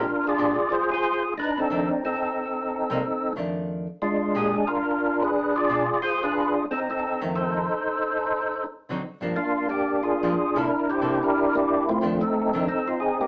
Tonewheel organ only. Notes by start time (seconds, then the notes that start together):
Already playing: D4 F4 A#4
0.27 F4 G#4 D5
0.70 F4 G#4 C5
0.92 F4 G#4 C5
1.38 D4 D#4 B4
1.58 C4 D#4 A4
2.05 C4 D#4 A4
4.02 G#3 D4 F4
4.37 G#4
4.56 G#4
4.67 D4 F4 A#4
5.22 D4 G#4 B4
5.56 F4 G#4 D5
6.02 F4 G#4 C5
6.23 D4 G#4 B4
6.71 C4 D#4 A4
6.90 C4 D#4 A4
7.35 D#4 A4 C5
9.36 A#3 D4 F4
9.69 A#3 D4 G4
10.03 D4 F4 G#4
10.56 D4 E4 A#4
10.90 E4 G4 C5
11.23 D4 E4 A#4
11.55 A#3 E4 G4
11.89 A3 C4 F4
12.21 C4 D#4 A4
12.68 C4 D#4 A4
12.88 F4
13.00 G#4
13.21 A#3 D#4 G4